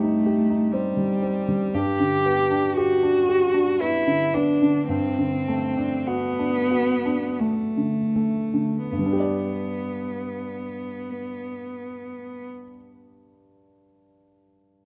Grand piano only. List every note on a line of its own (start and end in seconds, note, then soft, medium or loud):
0.00 1.71 G2 soft
0.00 0.97 G3 soft
0.00 0.73 C4 soft
0.00 0.03 D#4 soft
0.00 0.40 D#4 soft
0.00 0.17 G4 soft
0.26 0.63 G4 soft
0.50 0.87 D#4 soft
0.73 1.12 C4 soft
0.97 1.38 G3 soft
1.23 1.64 C4 soft
1.49 1.74 G3 soft
1.74 4.85 G2 soft
2.00 2.41 D3 soft
2.26 2.67 B3 soft
2.51 2.92 D4 soft
2.77 3.19 G4 soft
3.03 3.44 D4 soft
3.29 3.70 G4 soft
3.54 3.96 D4 soft
3.81 4.23 B3 soft
4.07 4.50 D3 soft
4.34 4.78 B3 soft
4.62 4.89 D3 soft
4.89 8.86 G2 soft
5.18 5.65 D3 soft
5.48 5.95 A3 soft
5.78 6.26 D4 soft
6.07 6.58 F#4 soft
6.39 6.91 D4 soft
6.71 7.25 F#4 soft
7.05 7.61 D4 soft
7.40 7.99 A3 soft
7.77 8.38 D3 soft
8.16 8.76 A3 soft
8.54 8.91 D3 soft
8.92 12.47 G2 soft
8.99 12.54 G3 soft
9.06 12.61 D4 soft
9.13 12.68 G4 soft
9.20 12.75 D5 soft